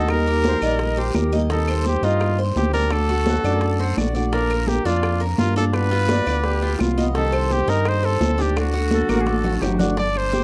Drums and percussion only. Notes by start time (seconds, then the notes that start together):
0.09 high bongo, high conga, long guiro, claves
0.27 high bongo, high conga
0.44 high bongo, high conga, short guiro
0.61 high bongo, short guiro, claves
0.79 high bongo, high conga, long guiro
0.97 high bongo, high conga
1.14 high bongo, low bongo, high conga, short guiro, claves
1.32 short guiro
1.50 high bongo, high conga, long guiro
1.68 high bongo, high conga, claves
1.85 high bongo, high conga, short guiro
2.03 high bongo, high conga, short guiro
2.20 high bongo, high conga, long guiro, claves
2.38 high bongo, high conga
2.56 high bongo, low bongo, high conga, short guiro
2.73 high conga, short guiro
2.90 high bongo, high conga, long guiro, claves
3.09 high bongo, high conga
3.26 high bongo, high conga, short guiro
3.44 high bongo, short guiro, claves
3.61 high bongo, high conga, long guiro
3.80 high bongo, high conga
3.97 high bongo, low bongo, high conga, short guiro, claves
4.15 short guiro
4.33 high bongo, high conga, long guiro
4.50 high bongo, high conga, claves
4.67 high bongo, high conga, short guiro
4.86 high bongo, high conga, short guiro
5.03 high bongo, high conga, long guiro, claves
5.21 high bongo, high conga
5.38 high bongo, low bongo, high conga, short guiro
5.56 high conga, short guiro
5.73 high bongo, long guiro, claves
5.91 high bongo, high conga
6.09 high bongo, high conga, short guiro
6.27 high bongo, short guiro, claves
6.44 high bongo, high conga, long guiro
6.62 high bongo, high conga
6.79 high bongo, low bongo, high conga, short guiro, claves
6.98 high conga, short guiro
7.15 high bongo, high conga, long guiro
7.33 high bongo, high conga, claves
7.50 high bongo, high conga, short guiro
7.68 high bongo, high conga, short guiro
7.85 high bongo, high conga, long guiro, claves
8.03 high bongo, high conga
8.21 high bongo, low bongo, high conga, short guiro
8.39 high conga, short guiro
8.56 high bongo, high conga, long guiro, claves
8.74 high bongo, high conga
8.91 high bongo, high conga, short guiro
9.09 high bongo, high conga, short guiro, claves
9.26 high bongo, high conga, long guiro
9.44 high bongo, low conga
9.61 high bongo, low bongo, low conga, short guiro, claves
9.79 low conga, short guiro
9.97 high bongo, high conga, long guiro
10.15 high bongo, high conga, claves
10.32 high bongo, high conga, short guiro